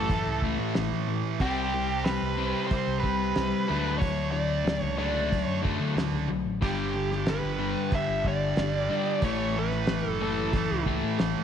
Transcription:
Already playing: F#1 A4
0.10 A2 E3 A3, kick, open hi-hat
0.26 C#2
0.42 A2 E3 A3, kick
0.59 A2
0.75 A1 A2 E3, snare, open hi-hat
0.92 A2
1.08 A2 E3
1.40 C2 C3 G3 C4 G4, kick, open hi-hat
1.74 C3 G3
2.04 C3 G3 B4, snare, open hi-hat
2.22 C2
2.37 C3 G3 C4
2.67 G3 C5, kick, open hi-hat
2.72 C3 C4
2.87 C2
3.00 B4
3.04 C3 G3, kick
3.36 C2 C3 G3, snare, open hi-hat
3.68 D2 D3 F#3 A3 D4
3.98 D3 F#3 C#5, kick, open hi-hat
4.32 D3 F#3 D5
4.65 D3 F#3, snare, open hi-hat
4.80 C#2 C#5
4.97 D3 F#3 A3 D4 D5
5.03 D3
5.30 D3 F#3, kick, open hi-hat
5.42 C#5
5.47 F#2
5.62 D3 F#3 A3, kick
5.80 D3
5.96 D2 D3 F#3, snare, open hi-hat
6.12 C#2
6.28 B1 D3 F#3
6.46 A1
6.61 G1 G2 D3 G3 G4, kick, open hi-hat
6.95 G2 D3
7.12 snare
7.26 G2 D3 B4, snare, open hi-hat
7.44 G1
7.59 G2 D3 G3
7.92 G2 D3 E5, kick, open hi-hat
7.96 G3
8.08 G1
8.25 G2 D3 D5, kick
8.57 G1 G2 D3, snare, open hi-hat
8.90 G2 D3 G3
9.22 A1 A2 E3 A3 C#5, kick, open hi-hat
9.55 A2 E3 B4
9.71 snare
9.87 A2 E3, snare, open hi-hat
10.05 F#1 A4
10.21 A2 E3 A3 A4
10.53 A2 E3 A3, kick, open hi-hat
10.71 C#2
10.86 A2 E3 A3, kick
11.03 A2
11.19 A1 A2 E3, snare, open hi-hat
11.38 A2

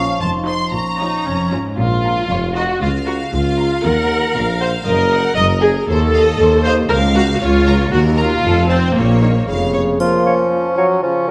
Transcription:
Already playing: F3 C#4 F4 A#4 F5 C#6
0.20 F1 F2 D#4 A5 C6
0.45 F3 D#4 F4 C5 C6
0.72 A#1 A#2 C#4 A#5 C#6
0.99 F3 C#4 D#4 F4 C#5
1.25 F1 F2 C#4
1.52 G#2 F3 C#4 F4 C#5
1.77 A#1 A#2 F4
2.04 A#5
2.29 F1 F2 C#5
2.55 F#4 D#5 A#5
2.80 C#2 F4 F5
3.06 F#4 A#5
3.32 C#2 F4
3.59 A#5
3.84 D#2 A#4 F#5
4.10 F#5
4.35 A#1 A#2 F5
4.60 C5 F#5
4.85 F#1 F#2 A#4 D#5
5.12 D#5 F#5
5.36 F#1 F#2 A#4 D#5
5.62 G#4 D#5
5.87 D#2 A4 C5
6.13 D#5 F5
6.38 D#2 C5
6.64 C5 D#5 F5
6.89 C#2 A#4 F5
7.14 F#4 A#5
7.34 F#4
7.40 C#2 F4 C#5
7.66 A#5
7.92 D#2 F#4 A#4
8.17 F4 A#5
8.43 F1 F2 A4
8.69 C4 C5 A5
8.95 A#1 A#2 A#3 C#5
9.21 D#3 C#5
9.47 F1 F2 C#3 F5
9.73 C#5
10.00 F3 A#3 F4, triangle
10.25 C#4 C#5 F5
10.51 F3
10.77 F#3 C#5 F5
11.02 C#3 F3 C#4

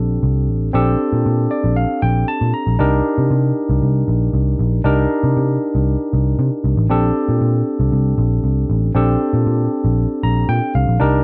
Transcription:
Already playing: A#1 C4 D4 G4 A4
0.23 C2
0.49 A1
0.73 A#1 C4 D4 G4 A4
1.13 A#2
1.26 A#2
1.51 D5
1.64 A#1
1.76 F5
2.02 A#1 G5
2.28 A5
2.41 A#2
2.54 A#5
2.67 A#1
2.79 C2 D4 D#4 G4 A#4
3.18 C3
3.31 C3
3.69 C2
3.82 C2
4.08 A#1
4.33 C2
4.59 A#1
4.84 C2 D4 D#4 G4 A#4
5.24 C3
5.37 C3
5.75 C2
6.13 C2
6.39 C3
6.64 C2
6.77 A1
6.89 A#1 C4 D4 G4 A4
7.29 A#2
7.41 A#2
7.80 C2
7.92 C2
8.18 A#1
8.44 C2
8.70 A1
8.95 A#1 C4 D4 G4 A4
9.33 A#2
9.46 A#2
9.85 A#1
10.23 A#1 A#5
10.49 A#2 G5
10.75 C2 F5
10.88 A#1
11.00 C2 D4 D#4 G4 A#4

